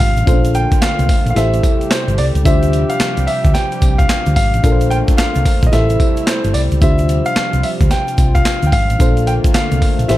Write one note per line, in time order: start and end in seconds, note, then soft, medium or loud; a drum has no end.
0.00 0.14 G#1 medium
0.00 0.25 C3 medium
0.00 0.25 F3 medium
0.00 0.25 G3 medium
0.00 0.23 D4 medium
0.00 0.23 F4 medium
0.00 0.25 F4 medium
0.00 0.23 G4 medium
0.00 0.24 C5 medium
0.00 0.56 F5 loud
0.00 kick medium
0.00 open hi-hat medium
0.00 tambourine medium
0.17 0.26 A1 loud
0.17 closed hi-hat medium
0.17 shaker medium
0.26 0.65 A#1 loud
0.26 1.35 D3 medium
0.26 2.43 A3 medium
0.26 1.35 A#3 medium
0.26 0.35 C#4 medium
0.26 1.34 F4 medium
0.26 1.35 F4 medium
0.26 1.34 A4 medium
0.26 1.35 C5 medium
0.26 kick loud
0.26 closed hi-hat medium
0.26 tambourine medium
0.26 shaker medium
0.33 1.37 D4 medium
0.45 closed hi-hat medium
0.45 shaker medium
0.55 0.80 G5 loud
0.55 closed hi-hat medium
0.55 shaker medium
0.72 kick loud
0.72 closed hi-hat medium
0.72 shaker medium
0.82 1.28 F5 loud
0.82 muted fingered electric bass stroke medium
0.82 snare loud
0.82 clap medium
0.82 closed hi-hat medium
0.82 tambourine loud
0.82 shaker medium
0.99 1.07 C2 medium
0.99 closed hi-hat medium
0.99 shaker medium
1.09 kick loud
1.09 open hi-hat medium
1.09 tambourine medium
1.26 1.34 A#1 loud
1.26 closed hi-hat medium
1.26 shaker medium
1.30 1.36 F5 medium
1.35 1.59 A1 loud
1.35 2.44 C3 medium
1.35 4.60 G3 medium
1.35 2.43 E4 medium
1.35 2.43 G4 medium
1.35 4.60 G4 loud
1.35 2.43 A4 medium
1.35 2.44 C5 medium
1.35 1.92 E5 loud
1.35 snare medium
1.35 closed hi-hat medium
1.35 tambourine medium
1.35 shaker medium
1.54 closed hi-hat soft
1.54 shaker soft
1.63 kick loud
1.63 closed hi-hat medium
1.63 tambourine medium
1.63 shaker medium
1.81 closed hi-hat soft
1.81 shaker soft
1.91 2.16 C5 medium
1.91 snare loud
1.91 clap loud
1.91 closed hi-hat medium
1.91 tambourine loud
1.91 shaker medium
2.08 2.16 G1 loud
2.08 closed hi-hat soft
2.08 shaker medium
2.18 2.33 C2 medium
2.18 2.24 D5 loud
2.18 open hi-hat medium
2.18 tambourine medium
2.35 2.44 C#2 loud
2.35 closed hi-hat medium
2.35 shaker medium
2.45 2.83 D2 loud
2.45 4.62 C3 medium
2.45 4.62 F3 medium
2.45 4.59 D4 medium
2.45 4.60 F4 medium
2.45 4.60 G4 medium
2.45 4.60 C5 medium
2.45 2.91 E5 loud
2.45 kick loud
2.45 closed hi-hat medium
2.45 tambourine medium
2.45 shaker medium
2.63 closed hi-hat medium
2.63 shaker medium
2.73 closed hi-hat medium
2.73 shaker medium
2.89 3.28 F5 loud
2.89 closed hi-hat medium
2.89 shaker medium
3.00 muted fingered electric bass stroke medium
3.00 snare loud
3.00 clap medium
3.00 closed hi-hat medium
3.00 tambourine medium
3.00 shaker medium
3.17 3.26 C2 medium
3.17 closed hi-hat medium
3.17 shaker medium
3.27 3.52 E5 loud
3.27 open hi-hat medium
3.27 tambourine medium
3.44 3.53 D2 loud
3.44 kick loud
3.44 closed hi-hat medium
3.44 shaker soft
3.54 4.00 G5 loud
3.54 snare medium
3.54 closed hi-hat medium
3.54 tambourine medium
3.54 shaker medium
3.72 closed hi-hat medium
3.72 shaker soft
3.82 4.05 C2 medium
3.82 kick loud
3.82 closed hi-hat medium
3.82 tambourine medium
3.82 shaker medium
3.98 4.35 F5 loud
3.98 kick medium
3.98 closed hi-hat medium
3.98 shaker medium
4.09 snare loud
4.09 clap loud
4.09 closed hi-hat medium
4.09 tambourine loud
4.09 shaker medium
4.26 4.35 D2 loud
4.26 closed hi-hat soft
4.26 shaker medium
4.36 4.51 G#1 medium
4.36 4.87 F5 loud
4.36 kick medium
4.36 open hi-hat medium
4.36 tambourine medium
4.54 4.62 A1 loud
4.54 closed hi-hat medium
4.54 shaker soft
4.63 5.02 A#1 loud
4.63 5.72 D3 medium
4.63 5.72 A3 medium
4.63 5.72 A#3 medium
4.63 5.70 D4 medium
4.63 5.71 F4 medium
4.63 5.72 F4 medium
4.63 5.71 A4 medium
4.63 4.73 A#4 medium
4.63 kick loud
4.63 closed hi-hat medium
4.63 tambourine medium
4.63 shaker medium
4.72 5.73 C5 medium
4.81 closed hi-hat medium
4.81 shaker medium
4.90 4.97 G5 loud
4.90 closed hi-hat medium
4.90 shaker medium
5.08 kick loud
5.08 closed hi-hat medium
5.08 shaker medium
5.17 5.64 F5 loud
5.17 muted fingered electric bass stroke medium
5.17 snare loud
5.17 clap medium
5.17 closed hi-hat medium
5.17 tambourine medium
5.17 shaker medium
5.35 5.44 C2 medium
5.35 closed hi-hat medium
5.35 shaker medium
5.46 kick loud
5.46 open hi-hat medium
5.46 tambourine medium
5.46 shaker soft
5.63 5.71 A#1 loud
5.63 kick medium
5.63 closed hi-hat medium
5.63 shaker medium
5.67 5.72 D#5 medium
5.72 5.96 A1 loud
5.72 8.97 C3 medium
5.72 8.97 G3 medium
5.72 6.81 A3 medium
5.72 6.79 E4 medium
5.72 6.81 E4 medium
5.72 6.79 G4 medium
5.72 6.80 A4 medium
5.72 6.80 C5 medium
5.72 6.29 E5 loud
5.72 snare medium
5.72 closed hi-hat medium
5.72 tambourine medium
5.72 shaker medium
5.90 closed hi-hat medium
5.90 shaker soft
6.00 kick loud
6.00 closed hi-hat medium
6.00 tambourine medium
6.17 closed hi-hat medium
6.17 shaker medium
6.27 6.52 C5 medium
6.27 snare loud
6.27 clap loud
6.27 closed hi-hat medium
6.27 tambourine loud
6.27 shaker medium
6.44 6.53 G1 medium
6.44 closed hi-hat medium
6.44 shaker medium
6.54 6.69 C2 medium
6.54 6.60 D5 medium
6.54 open hi-hat medium
6.54 tambourine medium
6.71 6.80 C#2 medium
6.71 closed hi-hat medium
6.71 shaker medium
6.81 7.19 D2 loud
6.81 8.98 F3 medium
6.81 8.96 D4 medium
6.81 8.98 F4 medium
6.81 8.96 F4 medium
6.81 8.96 G4 medium
6.81 8.97 C5 medium
6.81 7.28 E5 loud
6.81 kick loud
6.81 closed hi-hat medium
6.81 tambourine medium
6.81 shaker medium
6.99 closed hi-hat medium
6.99 shaker medium
7.09 closed hi-hat medium
7.09 shaker medium
7.26 7.64 F5 loud
7.26 closed hi-hat medium
7.26 shaker medium
7.36 muted fingered electric bass stroke medium
7.36 snare loud
7.36 clap medium
7.36 closed hi-hat medium
7.36 tambourine medium
7.36 shaker medium
7.53 7.62 C2 medium
7.53 closed hi-hat medium
7.53 shaker medium
7.63 7.70 E5 medium
7.63 open hi-hat medium
7.63 tambourine medium
7.81 7.89 D2 medium
7.81 kick loud
7.81 closed hi-hat medium
7.81 shaker soft
7.91 8.37 G5 loud
7.91 snare medium
7.91 closed hi-hat medium
7.91 tambourine medium
7.91 shaker medium
8.08 closed hi-hat medium
8.08 shaker soft
8.18 8.41 C2 medium
8.18 kick loud
8.18 closed hi-hat medium
8.18 tambourine medium
8.18 shaker medium
8.35 8.68 F5 loud
8.35 kick medium
8.35 closed hi-hat medium
8.35 shaker medium
8.45 snare loud
8.45 clap loud
8.45 closed hi-hat medium
8.45 tambourine loud
8.45 shaker medium
8.63 8.71 D2 medium
8.63 closed hi-hat medium
8.63 shaker medium
8.67 8.72 G5 medium
8.72 8.87 G#1 medium
8.72 9.29 F5 loud
8.72 kick medium
8.72 open hi-hat medium
8.72 tambourine medium
8.90 8.98 A1 loud
8.90 closed hi-hat medium
8.90 shaker medium
8.99 9.38 A#1 loud
8.99 10.08 D3 medium
8.99 10.18 A3 medium
8.99 10.08 A#3 medium
8.99 10.06 D4 medium
8.99 10.07 F4 medium
8.99 10.08 F4 medium
8.99 10.07 A4 medium
8.99 10.08 C5 medium
8.99 kick loud
8.99 closed hi-hat medium
8.99 tambourine medium
8.99 shaker medium
9.17 closed hi-hat medium
9.17 shaker medium
9.27 9.33 G5 loud
9.27 closed hi-hat medium
9.27 shaker soft
9.44 kick loud
9.44 closed hi-hat medium
9.44 shaker medium
9.54 10.11 F5 medium
9.54 muted fingered electric bass stroke medium
9.54 snare loud
9.54 clap medium
9.54 closed hi-hat medium
9.54 tambourine medium
9.54 shaker medium
9.72 9.80 C2 medium
9.72 closed hi-hat medium
9.72 shaker medium
9.82 kick medium
9.82 open hi-hat medium
9.82 tambourine medium
9.99 10.07 A#1 loud
9.99 closed hi-hat medium
9.99 shaker medium
10.08 10.18 A1 loud
10.08 10.18 C3 medium
10.08 10.18 G3 medium
10.08 10.18 E4 medium
10.08 10.18 G4 medium
10.08 10.18 A4 medium
10.08 10.18 C5 medium
10.08 10.18 E5 medium
10.08 snare medium
10.08 closed hi-hat medium
10.08 tambourine medium
10.08 shaker medium